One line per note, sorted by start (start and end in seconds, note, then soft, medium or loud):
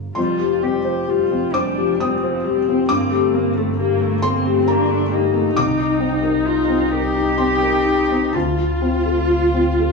0.00 0.16 G1 soft
0.00 0.19 A#3 soft
0.00 0.19 D4 soft
0.00 0.19 A4 soft
0.15 2.91 F1 medium
0.15 2.85 F2 medium
0.15 0.41 G3 medium
0.15 0.65 F4 medium
0.15 1.50 C6 medium
0.39 0.64 F3 soft
0.39 0.76 G4 medium
0.62 0.86 G3 medium
0.62 0.99 C4 soft
0.62 1.11 G4 medium
0.85 1.08 F3 soft
0.85 1.22 C5 soft
1.08 1.33 G3 medium
1.08 1.56 F4 medium
1.08 1.45 G4 medium
1.31 1.55 F3 soft
1.31 1.68 C4 soft
1.53 1.79 G3 soft
1.53 2.02 D4 medium
1.53 1.91 C5 medium
1.53 1.96 D6 medium
1.77 1.99 F3 medium
1.77 2.14 G4 medium
2.00 2.24 G3 soft
2.00 3.79 C4 medium
2.00 2.37 C4 soft
2.00 2.86 D#6 medium
2.23 2.47 F3 medium
2.23 2.59 C5 soft
2.44 2.69 G3 soft
2.44 2.80 G4 medium
2.67 2.89 F3 soft
2.67 2.90 C4 medium
2.89 5.58 G1 medium
2.89 5.52 G2 medium
2.89 3.12 A#3 medium
2.89 4.19 D6 loud
3.11 3.35 A3 medium
3.11 3.48 G4 medium
3.34 3.58 A#3 medium
3.34 3.70 A#3 medium
3.56 3.78 A3 medium
3.56 3.92 A4 medium
3.79 4.02 A#3 medium
3.79 4.25 A#3 medium
3.79 4.15 G4 medium
4.00 4.24 A3 medium
4.00 4.36 A#3 medium
4.22 4.47 A#3 medium
4.22 4.70 C4 medium
4.22 4.58 A4 medium
4.22 4.63 C6 loud
4.46 4.67 A3 medium
4.46 4.80 G4 medium
4.66 5.02 A#3 medium
4.66 4.92 A#3 medium
4.66 5.15 D4 medium
4.66 5.52 A#5 medium
4.88 5.24 A3 medium
4.88 5.13 A3 medium
5.11 5.35 A#3 medium
5.11 6.48 D#4 medium
5.11 5.47 G4 medium
5.33 5.56 A3 medium
5.33 5.56 A#3 medium
5.56 8.30 C2 medium
5.56 8.34 C2 medium
5.56 7.35 D#4 medium
5.56 7.34 D6 loud
5.78 6.14 D#4 medium
6.00 6.36 C4 medium
6.23 6.59 A#4 medium
6.46 6.83 D#4 medium
6.46 6.93 F4 medium
6.69 7.05 C4 soft
6.91 8.36 G4 medium
6.91 7.29 A#4 medium
7.17 7.54 D#4 medium
7.38 7.76 C4 medium
7.38 8.35 D#4 medium
7.38 8.30 C6 medium
7.63 8.01 A#4 soft
7.86 8.24 D#4 soft
8.11 8.34 C4 medium
8.33 9.92 D2 medium
8.33 9.92 F4 medium
8.33 9.92 A5 medium
8.58 8.96 F4 soft
8.82 9.20 C4 soft
9.06 9.44 A4 soft
9.30 9.68 F4 medium
9.54 9.92 C4 soft
9.80 9.92 A4 soft